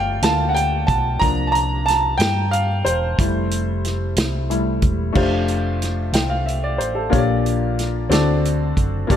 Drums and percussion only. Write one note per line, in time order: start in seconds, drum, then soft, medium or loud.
0.22 snare loud
0.22 closed hi-hat medium
0.56 closed hi-hat soft
0.88 kick medium
0.88 closed hi-hat soft
1.22 kick medium
1.22 closed hi-hat medium
1.55 closed hi-hat soft
1.88 snare soft
1.88 closed hi-hat soft
2.20 snare loud
2.20 closed hi-hat medium
2.53 closed hi-hat soft
2.86 closed hi-hat soft
3.19 kick loud
3.19 closed hi-hat medium
3.51 closed hi-hat medium
3.85 snare soft
3.85 closed hi-hat soft
4.16 snare loud
4.16 closed hi-hat medium
4.51 closed hi-hat soft
4.82 kick medium
4.82 closed hi-hat soft
5.15 kick medium
5.15 crash medium
5.48 closed hi-hat soft
5.82 snare soft
5.82 closed hi-hat soft
6.13 snare medium
6.13 closed hi-hat medium
6.48 closed hi-hat soft
6.80 closed hi-hat soft
7.13 kick medium
7.13 closed hi-hat medium
7.46 closed hi-hat soft
7.79 snare soft
7.79 closed hi-hat soft
8.11 snare medium
8.11 closed hi-hat medium
8.45 closed hi-hat soft
8.77 kick medium
8.77 closed hi-hat soft
9.10 kick medium
9.10 closed hi-hat medium